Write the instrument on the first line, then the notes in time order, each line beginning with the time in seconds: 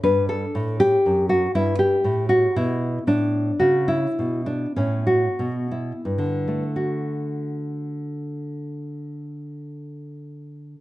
nylon-string guitar
0.03 G2 D4 B4
0.29 A4
0.55 A2
0.80 G4
1.06 F#2
1.29 F#4
1.55 G2 E4
1.79 G4
2.04 A2
2.29 F#4
2.56 B2 E4
3.07 A2 D4
3.60 C#3 F#4
3.88 E4
4.19 B2
4.46 D4
4.76 A2 C#4
5.07 F#4
5.39 B2
5.71 E4
6.05 G2
6.18 D3
6.48 A3
6.76 F#4